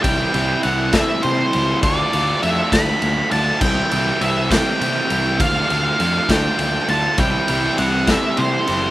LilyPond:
<<
  \new Staff \with { instrumentName = "Lead electric guitar" } { \time 6/8 \key c \lydian \tempo 4. = 67 g''4 fis''8 e''8 c''4 | d''4 e''8 b''4 a''8 | g''4 e''8 g''4. | f''4. g''4 a''8 |
g''4 fis''8 e''8 c''4 | }
  \new Staff \with { instrumentName = "Distorted electric guitar" } { \time 6/8 \key c \lydian <c e g c' e'>8 <c e g c' e'>8 <c e g c' e'>8 <c e g c' e'>4 <c e g c' e'>8 | <d a d' f'>8 <d a d' f'>8 <d a d' f'>8 <d a d' f'>4 <d a d' f'>8 | <c e g c' e'>8 <c e g c' e'>8 <c e g c' e'>8 <c e g c' e'>4 <c e g c' e'>8 | <d a d' f'>8 <d a d' f'>8 <d a d' f'>8 <d a d' f'>4 <d a d' f'>8 |
<c g c' e'>8 <c g c' e'>8 <c g c' e'>8 <c g c' e'>4 <c g c' e'>8 | }
  \new Staff \with { instrumentName = "Overdriven electric guitar" } { \time 6/8 \key c \lydian <c e g c' e'>8 <c e g c' e'>8 <c e g c' e'>8 <c e g c' e'>4 <c e g c' e'>8 | <d a d' f'>8 <d a d' f'>8 <d a d' f'>8 <d a d' f'>4 <d a d' f'>8 | <c e g c' e'>8 <c e g c' e'>8 <c e g c' e'>8 <c e g c' e'>4 <c e g c' e'>8 | <d a d' f'>8 <d a d' f'>8 <d a d' f'>8 <d a d' f'>4 <d a d' f'>8 |
<c e g c' e'>8 <c e g c' e'>8 <c e g c' e'>8 <c e g c' e'>4 <c e g c' e'>8 | }
  \new Staff \with { instrumentName = "Picked electric bass" } { \clef bass \time 6/8 \key c \lydian c,8 c,8 c,4 c8 cis,8 | d,8 d,8 f,8 d,8 d,8 d,8 | c,8 c,8 c,4 c8 c,8 | d,8 d,8 f,8 d,8 d,8 d,8 |
c,8 c,8 c,4 c8 fis,,8 | }
  \new DrumStaff \with { instrumentName = "Drums" } \drummode { \time 6/8 <bd cymr>8 cymr8 cymr8 <bd cymr sn>8 cymr8 cymr8 | <bd cymr>8 cymr8 cymr8 <bd cymr sn>8 cymr8 cymr8 | <cymc bd>8 cymr8 cymr8 <bd cymr sn>8 cymr8 cymr8 | <bd cymr>8 cymr8 cymr8 <bd cymr sn>8 cymr8 cymr8 |
<bd cymr>8 cymr8 cymr8 <bd cymr sn>8 cymr8 cymr8 | }
>>